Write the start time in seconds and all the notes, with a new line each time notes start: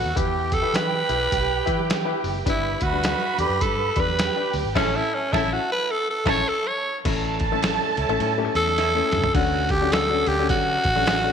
Already playing: F#4 F#5
0.05 D#2
0.16 E2 E3 E4 G4 B4 G5, kick, closed hi-hat, muted conga, low conga
0.36 muted conga
0.52 A4, kick, closed hi-hat
0.62 E4 G4 B4
0.73 E3 B4, snare, closed hi-hat
0.91 high conga
1.09 B1 E4 G4 B4, closed hi-hat
1.32 B1, kick, closed hi-hat, high conga
1.66 E3 E4 G4 B4, kick, closed hi-hat
1.79 high conga
1.90 snare, closed hi-hat
2.05 E4 G4 B4
2.24 F#1, open hi-hat, low conga
2.46 G1 G2 D4 E4 G4 B4 B5, kick, closed hi-hat, muted conga, low conga
2.81 D2 F#4, kick, closed hi-hat
2.93 G3 D4 B4
3.03 snare, closed hi-hat, muted conga
3.20 muted conga, high conga
3.38 E2 D4 G4 A4, closed hi-hat
3.46 F#2 B4
3.61 G2 A4, kick, closed hi-hat, muted conga, high conga
3.79 muted conga
3.96 E2 D4 G4 B4, kick, closed hi-hat
4.00 B4
4.08 high conga
4.19 G4 G5, snare, closed hi-hat
4.36 D4 G4 B4, muted conga
4.53 D2, open hi-hat, low conga
4.65 G#1
4.75 A1 A2 C#4 E4 A4 A5, kick, snare, crash
4.96 E4
5.14 C#4
5.33 A1 C#4 E4 A4 A5, kick, snare
5.53 F#4
5.72 B4
5.91 A4
6.10 A4
6.25 A1 C#4 E4 A4 C#5 A5, kick, snare, crash
6.48 A4
6.67 C#5
7.05 A1 A2 A3 C#4 E4 A4 A5, kick, crash, ride, low conga
7.24 muted conga
7.40 kick, ride
7.52 A3 C#4 E4 A4, high conga
7.63 snare, ride
7.80 high conga
7.97 C#2 C#4 E4 A4, ride
8.09 A1 A3 C#4 E4 A4, ride
8.20 A2 C#4 E4 A4, ride, muted conga, high conga
8.38 A3 C#4 E4 G4, muted conga
8.45 A4
8.55 E2 A4, ride
8.67 high conga
8.77 C#4 E4 A4, snare, ride, muted conga
8.95 A3 C#4 E4 A4
9.12 G2, mid tom, ride, low conga
9.24 floor tom
9.35 D2 D3 C#4 D4 F#4 A4, kick, ride, low conga
9.69 G4, kick, snare, ride
9.81 C#4 D4 F#4 A4, high conga
9.92 A4, snare, ride
10.09 C#4 D4 F#4 A4, muted conga, high conga
10.26 D2 G4, ride
10.39 C#4 D4 F#4 A4
10.49 D3 F#4, kick, ride, muted conga, high conga
10.84 A1, kick, snare, ride
10.95 C#4 D4 F#4 A4, high conga
11.07 snare, ride, muted conga
11.24 C#4 D4 F#4 A4, muted conga